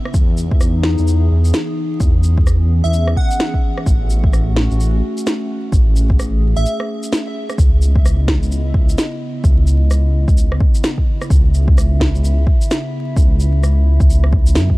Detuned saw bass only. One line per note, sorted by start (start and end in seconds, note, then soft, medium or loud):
0.14 0.96 E2 loud
0.99 1.30 E2 medium
1.31 1.52 E2 medium
2.00 2.82 E2 loud
2.84 3.15 E2 medium
3.86 4.68 A1 loud
4.71 5.02 A1 medium
5.72 6.54 A1 loud
6.57 6.66 A1 medium
7.58 8.40 C#2 loud
8.42 8.73 C#2 medium
8.74 8.96 C#2 medium
9.44 10.26 C#2 loud
10.28 10.59 C#2 medium
11.30 12.12 C#2 loud
12.15 12.46 C#2 medium
13.17 13.99 C#2 loud
14.00 14.58 C#2 medium
14.56 14.78 F#2 medium